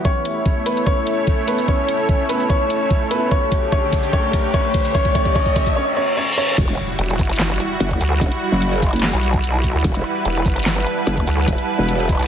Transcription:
Already playing: ambient pad B3 G4 E5 B5
0.05 supersaw synth A3 E4 C#5, grand piano C#4 C#5, ambient pad C#4, kick, riser
0.22 ambient pad A4, closed hi-hat
0.36 ambient pad A5
0.46 kick
0.66 grand piano B3 B4, closed hi-hat, shaker
0.76 shaker
0.86 grand piano C#4 C#5, kick
1.07 closed hi-hat
1.27 kick
1.48 grand piano B3 B4, closed hi-hat
1.58 shaker
1.68 grand piano C#4 C#5, kick
1.89 closed hi-hat
2.09 kick
2.29 grand piano B3 B4, closed hi-hat, shaker
2.40 shaker
2.50 grand piano C#4 C#5, kick
2.70 closed hi-hat
2.91 kick
3.11 grand piano B3 B4, closed hi-hat
3.31 supersaw synth D3 G4, ambient pad A3, grand piano C#4 C#5, kick
3.52 kick, closed hi-hat
3.61 ambient pad G5
3.72 grand piano C#4 C#5, kick
3.93 kick, closed hi-hat, shaker
4.03 shaker
4.13 grand piano C#4 C#5, kick
4.33 kick, closed hi-hat
4.54 grand piano C#4 C#5, kick
4.74 kick, closed hi-hat
4.85 shaker
4.95 grand piano C#4 C#5, kick
5.05 kick
5.15 grand piano C#4 C#5, kick, closed hi-hat
5.25 kick
5.35 grand piano C#4 C#5, kick
5.46 kick
5.56 grand piano C#4 C#5, kick, closed hi-hat, shaker
5.66 kick, shaker
5.76 grand piano C#4 C#5, reverse cymbal
5.97 grand piano C#4 C#5
6.17 grand piano C#4 C#5
6.38 grand piano C#4 C#5
6.58 wobble bass E1, supersaw synth G3 E4 F#4, ambient pad E4, kick, closed hi-hat, crash, impact, shaker
6.68 closed hi-hat
6.77 ambient pad G3
6.98 wobble bass E1, ambient pad F#5 B5, closed hi-hat
7.09 shaker
7.19 wobble bass G1, kick, shaker
7.30 closed hi-hat
7.33 closed hi-hat
7.36 snare, clap, closed hi-hat
7.40 closed hi-hat
7.60 closed hi-hat
7.80 wobble bass F#1, closed hi-hat
7.91 kick
8.01 wobble bass D2, closed hi-hat, shaker
8.21 wobble bass E1, kick, closed hi-hat, shaker
8.32 closed hi-hat
8.52 wobble bass F#1
8.62 closed hi-hat
8.72 shaker
8.82 kick, shaker
8.93 closed hi-hat
8.96 closed hi-hat
9.00 snare, clap, closed hi-hat
9.03 closed hi-hat
9.13 wobble bass B1
9.23 closed hi-hat
9.34 kick
9.44 closed hi-hat
9.64 kick, closed hi-hat
9.75 wobble bass D2
9.84 wobble bass E1, supersaw synth B4, kick, closed hi-hat, shaker
9.95 closed hi-hat
10.25 wobble bass E1, ambient pad A5, closed hi-hat
10.36 shaker
10.46 wobble bass G1, kick, shaker
10.56 closed hi-hat
10.59 closed hi-hat
10.63 snare, clap, closed hi-hat
10.87 closed hi-hat
11.07 wobble bass F#1, closed hi-hat
11.17 kick
11.27 wobble bass D2, closed hi-hat, shaker
11.48 wobble bass E1, kick, closed hi-hat, shaker
11.58 closed hi-hat
11.79 wobble bass E1
11.89 closed hi-hat
11.99 shaker
12.09 kick, shaker
12.19 wobble bass B1, closed hi-hat
12.23 closed hi-hat

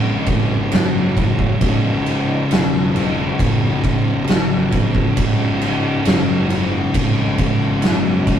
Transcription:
Already playing: fingered electric bass G#1, distorted electric guitar C#2 G#2 C#3
0.26 kick, crash
0.72 fingered electric bass F#1, snare, crash
1.17 kick, crash
1.39 kick
1.60 fingered electric bass C#1, distorted electric guitar C#2 G#2 C#3, kick, crash
2.06 crash
2.51 fingered electric bass E1, snare, crash
2.95 distorted electric guitar C#2 G#2 C#3, crash
3.39 fingered electric bass F#1, kick, crash
3.83 fingered electric bass C#1, kick, crash
4.27 fingered electric bass G#1, snare, crash
4.72 kick, crash
4.95 kick
5.17 fingered electric bass C#1, distorted electric guitar C#2 G#2 C#3, kick, crash
5.62 crash
6.05 fingered electric bass F#1, snare, crash
6.48 distorted electric guitar C#2 G#2 C#3, crash
6.94 fingered electric bass G#1, kick, crash
7.38 kick, crash
7.82 fingered electric bass F#1, snare, crash
8.27 kick, crash

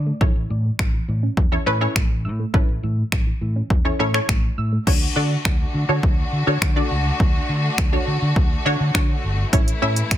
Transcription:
Already playing: fingered electric bass D3
0.06 synth arpeggio sound A3
0.21 fingered electric bass A1, synth arpeggio sound E3, synth pluck C#4 E4 A4 C#5, kick
0.36 fingered electric bass A1
0.50 fingered electric bass A2, synth arpeggio sound E3
0.79 fingered electric bass A1, finger snap, kick
0.94 synth arpeggio sound E3
1.08 fingered electric bass A2, synth arpeggio sound E3
1.23 synth arpeggio sound C#4
1.37 fingered electric bass E2, synth arpeggio sound E3, kick
1.52 synth arpeggio sound E3, synth pluck C#4 E4 A4 C#5
1.66 fingered electric bass A2, synth arpeggio sound E3, synth pluck C#4 E4 A4 B4
1.81 synth pluck C#4 E4 A4 C#5
1.96 fingered electric bass A1, synth arpeggio sound A3, finger snap, kick
2.25 fingered electric bass A2, synth arpeggio sound E6
2.40 synth arpeggio sound A3
2.54 fingered electric bass A1, synth arpeggio sound E3, synth pluck C#4 E4 A4 B4, kick
2.69 fingered electric bass A1
2.83 fingered electric bass A2, synth arpeggio sound E3
3.12 fingered electric bass A1, finger snap, kick
3.27 synth arpeggio sound E3
3.41 fingered electric bass A2, synth arpeggio sound E3
3.56 synth arpeggio sound C#4
3.70 fingered electric bass E2, synth arpeggio sound E3, kick
3.85 synth arpeggio sound E3, synth pluck C#4 E4 A4 C#5
3.99 fingered electric bass A2, synth arpeggio sound E3, synth pluck C#4 E4 A4 C#5
4.14 synth pluck C#4 E4 A4 C#5, finger snap
4.29 fingered electric bass A1, synth arpeggio sound A3, finger snap, kick
4.58 fingered electric bass A2, synth arpeggio sound E6
4.72 synth arpeggio sound A3
4.87 fingered electric bass D2, string section D3 A3 D4 F#4, synth pluck D4 F#4 A4 C#5, kick, crash
5.16 fingered electric bass D3, synth pluck D4 F#4 A4 D5
5.45 fingered electric bass D2, finger snap, kick
5.74 fingered electric bass D3
5.89 fingered electric bass D3, synth pluck D4 F#4 A4 C#5
6.03 fingered electric bass D2, kick
6.33 fingered electric bass D3
6.47 fingered electric bass D3, synth pluck D4 F#4 A4 C#5
6.62 fingered electric bass D3, finger snap, kick
6.76 synth pluck D4 F#4 A4 D5
6.91 fingered electric bass C#2
7.20 fingered electric bass D2, kick
7.49 fingered electric bass D3
7.78 fingered electric bass D2, finger snap, kick
7.93 synth pluck D4 F#4 A4 C#5
8.07 fingered electric bass D3
8.22 fingered electric bass D3
8.36 fingered electric bass D2, kick
8.65 fingered electric bass D3, synth pluck D4 F#4 A4 C#5
8.80 fingered electric bass D3
8.95 fingered electric bass D3, synth pluck D4 F#4 A4 C#5, finger snap, kick
9.24 fingered electric bass G1
9.53 fingered electric bass A1, string section E3 E4, synth pluck C#4 E4 A4 C#5, kick, closed hi-hat
9.68 closed hi-hat
9.82 fingered electric bass A2, synth pluck C#4 E4 A4 E5
9.96 closed hi-hat
10.11 fingered electric bass A1, finger snap, kick, closed hi-hat

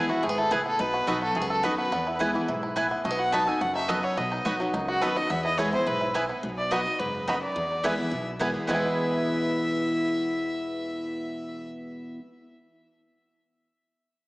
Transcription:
Already playing: upright bass E2, steel-string acoustic guitar E2, five-string banjo B3, fiddle G#4
0.09 steel-string acoustic guitar B3 E4, five-string banjo E4, fiddle F#4
0.23 upright bass D#2, steel-string acoustic guitar G#2, five-string banjo A3, fiddle G#4
0.29 five-string banjo B3
0.38 five-string banjo E4, fiddle A4
0.51 upright bass C#2, steel-string acoustic guitar A2, mandolin B3 E4 B4 G#5, five-string banjo E4, fiddle G#4
0.66 five-string banjo B3, fiddle A4
0.79 upright bass B1, steel-string acoustic guitar B2, five-string banjo D#4, fiddle B4
0.94 five-string banjo F#4
1.07 upright bass B1, steel-string acoustic guitar F#3 B3 D#4 F#4, mandolin B3 F#4 D#5 B5, five-string banjo A4
1.22 five-string banjo F#4, fiddle A4
1.35 upright bass C#2, steel-string acoustic guitar F#2, five-string banjo A3, fiddle G#4
1.41 five-string banjo B3
1.50 five-string banjo A4, fiddle A4
1.63 upright bass D#2, steel-string acoustic guitar F#3 B3 D#4 F#4, mandolin B3 F#4 D#5 B5, five-string banjo F#4, fiddle B4
1.78 five-string banjo B3, fiddle B4
1.92 upright bass E2, steel-string acoustic guitar E2, five-string banjo B3
2.07 five-string banjo E4
2.19 steel-string acoustic guitar E3 G#3 B3 E4, mandolin B3 E4 B4 G#5, five-string banjo E4
2.34 five-string banjo E3, steel-string acoustic guitar B3 E4
2.48 upright bass B1, steel-string acoustic guitar G#2, five-string banjo E4
2.63 five-string banjo E4
2.76 steel-string acoustic guitar A2, mandolin B3 E4 B4 G#5, five-string banjo E4
2.91 five-string banjo B3
3.04 upright bass B1, steel-string acoustic guitar B2, five-string banjo A3, fiddle D#5
3.10 five-string banjo B3
3.19 five-string banjo F#4, fiddle F#5
3.32 steel-string acoustic guitar F#3 B3 D#4 F#4, mandolin B3 F#4 D#5 B5, five-string banjo D#4, fiddle A5
3.47 steel-string acoustic guitar D#4 F#4, five-string banjo A4, fiddle G#5
3.60 upright bass F#1, steel-string acoustic guitar F#2, five-string banjo F#4, fiddle F#5
3.75 five-string banjo D#4, fiddle E5
3.89 steel-string acoustic guitar F#3 B3 D#4 F#4, mandolin B3 F#4 D#5 B5, five-string banjo A4, fiddle D#5
4.03 five-string banjo B3, fiddle C#5
4.17 upright bass B1, steel-string acoustic guitar B2, five-string banjo B3, fiddle D#5
4.32 five-string banjo D#4
4.45 upright bass B1, steel-string acoustic guitar F#3 B3 D#4 F#4, mandolin B3 F#4 D#5 B5, five-string banjo F#4
4.60 five-string banjo F#3, steel-string acoustic guitar D#4 F#4
4.73 upright bass C#2, steel-string acoustic guitar F#2, five-string banjo D#4
4.88 five-string banjo F#4, fiddle F#4
5.02 upright bass D#2, steel-string acoustic guitar F#3 B3 D#4 F#4, mandolin B3 F#4 D#5 B5, five-string banjo A4, fiddle B4
5.16 five-string banjo B3, steel-string acoustic guitar D#4 F#4, fiddle D#5
5.30 steel-string acoustic guitar E2, upright bass E2, five-string banjo B3, fiddle E5
5.45 five-string banjo E4, fiddle D#5
5.58 steel-string acoustic guitar E3 G#3 B3 E4, mandolin B3 E4 B4 G#5, five-string banjo E4, fiddle C#5
5.73 steel-string acoustic guitar B3 E4, five-string banjo E4, fiddle C5
5.86 upright bass B1, steel-string acoustic guitar G#2, five-string banjo E4, fiddle B4
6.01 five-string banjo E4
6.14 steel-string acoustic guitar A2, mandolin B3 E4 B4 G#5, five-string banjo E4
6.29 five-string banjo B3
6.43 upright bass B1, steel-string acoustic guitar B2
6.58 fiddle D5
6.71 steel-string acoustic guitar F#3 B3 D#4 F#4, mandolin B3 F#4 D#5 B5, five-string banjo B3 D#4 F#4, fiddle D#5
6.85 steel-string acoustic guitar D#4 F#4
6.99 upright bass F#1, steel-string acoustic guitar G#2, fiddle B4
7.28 steel-string acoustic guitar F#2, mandolin B3 F#4 D#5 B5, five-string banjo B3 D#4 F#4
7.42 fiddle D5
7.56 upright bass E2, steel-string acoustic guitar E2
7.83 steel-string acoustic guitar E3 G#3 B3 E4, mandolin B3 E4 B4 G#5, five-string banjo B3 E4, fiddle E5
7.98 steel-string acoustic guitar B3 E4
8.11 upright bass B1, steel-string acoustic guitar B2
8.39 steel-string acoustic guitar E3 G#3 B3 E4, mandolin B3 E4 B4 G#5, five-string banjo B3 E4
8.67 steel-string acoustic guitar E2 B2 E3 G#3 B3 E4, upright bass E2, five-string banjo G#3 B3, mandolin B3 E4 B4 G#5, fiddle E5
8.73 five-string banjo E4 G#4

